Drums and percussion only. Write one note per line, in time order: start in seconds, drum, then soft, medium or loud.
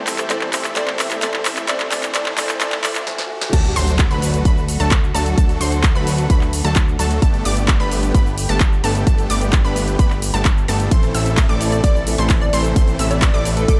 0.07 clap medium
0.07 open hi-hat loud
0.07 shaker medium
0.18 clap medium
0.18 closed hi-hat medium
0.18 shaker soft
0.30 clap medium
0.30 closed hi-hat medium
0.30 shaker soft
0.41 clap medium
0.53 clap medium
0.53 open hi-hat loud
0.53 shaker medium
0.64 clap medium
0.64 closed hi-hat medium
0.64 shaker soft
0.76 clap loud
0.76 closed hi-hat medium
0.76 shaker soft
0.88 clap medium
0.99 clap loud
0.99 open hi-hat medium
0.99 shaker medium
1.11 clap medium
1.11 closed hi-hat soft
1.11 shaker soft
1.22 clap loud
1.22 closed hi-hat medium
1.22 shaker soft
1.34 clap medium
1.45 clap loud
1.45 open hi-hat loud
1.45 shaker medium
1.57 clap medium
1.57 closed hi-hat medium
1.57 shaker soft
1.68 clap loud
1.68 closed hi-hat medium
1.68 shaker soft
1.80 clap medium
1.80 closed hi-hat soft
1.91 clap loud
1.91 open hi-hat loud
1.91 shaker medium
2.03 clap medium
2.03 closed hi-hat medium
2.03 shaker soft
2.15 clap loud
2.15 closed hi-hat medium
2.15 shaker soft
2.26 clap loud
2.38 clap loud
2.38 open hi-hat loud
2.38 shaker medium
2.49 clap medium
2.49 closed hi-hat medium
2.49 shaker soft
2.61 clap loud
2.61 closed hi-hat medium
2.61 shaker soft
2.72 clap loud
2.72 closed hi-hat soft
2.84 clap loud
2.84 open hi-hat loud
2.84 shaker medium
2.95 clap medium
2.95 closed hi-hat medium
2.95 shaker soft
3.07 snare medium
3.18 snare medium
3.41 snare medium
3.53 kick loud
3.53 closed hi-hat medium
3.53 crash loud
3.53 shaker soft
3.65 closed hi-hat soft
3.65 shaker soft
3.76 open hi-hat loud
3.76 shaker medium
3.88 closed hi-hat medium
3.88 shaker soft
3.99 kick loud
3.99 clap loud
3.99 closed hi-hat medium
3.99 shaker soft
4.11 shaker soft
4.22 open hi-hat loud
4.22 shaker medium
4.34 closed hi-hat medium
4.34 shaker soft
4.45 kick loud
4.45 closed hi-hat medium
4.45 shaker soft
4.58 shaker soft
4.68 open hi-hat loud
4.68 shaker medium
4.80 closed hi-hat medium
4.80 shaker soft
4.91 kick loud
4.91 clap loud
4.91 closed hi-hat medium
4.91 shaker soft
5.04 shaker soft
5.15 open hi-hat loud
5.15 shaker medium
5.26 closed hi-hat medium
5.26 shaker soft
5.38 kick loud
5.38 closed hi-hat medium
5.38 shaker soft
5.49 closed hi-hat soft
5.49 shaker soft
5.61 open hi-hat loud
5.61 shaker medium
5.72 closed hi-hat medium
5.72 shaker soft
5.84 kick loud
5.84 clap loud
5.84 closed hi-hat medium
5.84 shaker soft
5.96 shaker soft
6.07 open hi-hat loud
6.07 shaker medium
6.18 closed hi-hat medium
6.18 shaker soft
6.30 kick loud
6.30 closed hi-hat medium
6.30 shaker soft
6.41 clap soft
6.41 shaker soft
6.53 open hi-hat loud
6.53 shaker medium
6.65 closed hi-hat medium
6.65 shaker soft
6.76 kick loud
6.76 clap loud
6.76 closed hi-hat medium
6.76 shaker soft
6.88 shaker soft
6.99 open hi-hat loud
6.99 shaker medium
7.11 closed hi-hat medium
7.11 shaker soft
7.22 kick loud
7.22 closed hi-hat medium
7.22 shaker soft
7.34 closed hi-hat soft
7.34 shaker soft
7.45 open hi-hat loud
7.45 shaker medium
7.57 closed hi-hat medium
7.57 shaker soft
7.68 kick loud
7.68 clap loud
7.68 closed hi-hat medium
7.68 shaker soft
7.81 shaker soft
7.91 open hi-hat loud
7.91 shaker medium
8.03 closed hi-hat medium
8.03 shaker soft
8.15 kick loud
8.15 closed hi-hat medium
8.15 shaker soft
8.27 shaker soft
8.38 open hi-hat loud
8.38 shaker medium
8.49 closed hi-hat soft
8.49 shaker soft
8.60 kick loud
8.60 clap loud
8.60 closed hi-hat medium
8.60 shaker soft
8.73 shaker soft
8.84 open hi-hat loud
8.84 shaker medium
8.95 closed hi-hat soft
8.95 shaker soft
9.07 kick loud
9.07 closed hi-hat medium
9.07 shaker soft
9.18 closed hi-hat soft
9.18 shaker soft
9.30 open hi-hat loud
9.30 shaker medium
9.41 closed hi-hat soft
9.41 shaker soft
9.53 kick loud
9.53 clap loud
9.53 closed hi-hat medium
9.53 shaker soft
9.65 shaker soft
9.76 open hi-hat loud
9.76 shaker medium
9.88 closed hi-hat soft
9.88 shaker soft
9.99 kick loud
9.99 closed hi-hat medium
9.99 shaker soft
10.10 clap soft
10.10 shaker soft
10.22 open hi-hat loud
10.22 shaker medium
10.34 closed hi-hat soft
10.34 shaker soft
10.45 kick loud
10.45 clap loud
10.45 closed hi-hat medium
10.45 shaker soft
10.58 shaker soft
10.68 open hi-hat loud
10.68 shaker medium
10.80 closed hi-hat medium
10.80 shaker soft
10.91 kick loud
10.91 closed hi-hat medium
10.91 ride medium
10.91 shaker soft
11.03 closed hi-hat soft
11.03 shaker soft
11.15 open hi-hat loud
11.15 shaker medium
11.26 closed hi-hat medium
11.26 shaker soft
11.37 kick loud
11.37 clap loud
11.37 closed hi-hat medium
11.37 ride medium
11.37 shaker soft
11.50 shaker soft
11.61 open hi-hat loud
11.61 shaker medium
11.72 closed hi-hat soft
11.72 shaker soft
11.84 kick loud
11.84 closed hi-hat medium
11.84 ride medium
11.84 shaker medium
11.96 shaker soft
12.07 open hi-hat loud
12.07 shaker medium
12.18 closed hi-hat soft
12.18 shaker soft
12.30 kick loud
12.30 clap loud
12.30 closed hi-hat medium
12.30 ride medium
12.30 shaker soft
12.42 shaker soft
12.53 open hi-hat loud
12.53 shaker medium
12.65 closed hi-hat soft
12.65 shaker soft
12.76 kick loud
12.76 closed hi-hat medium
12.76 ride medium
12.76 shaker soft
12.88 closed hi-hat soft
12.88 shaker soft
12.99 open hi-hat loud
12.99 shaker medium
13.11 closed hi-hat medium
13.11 shaker soft
13.22 kick loud
13.22 clap loud
13.22 closed hi-hat medium
13.22 ride medium
13.22 shaker soft
13.35 shaker soft
13.45 open hi-hat loud
13.45 shaker medium
13.57 closed hi-hat medium
13.57 shaker soft
13.68 kick loud
13.68 closed hi-hat medium
13.68 ride medium
13.68 shaker medium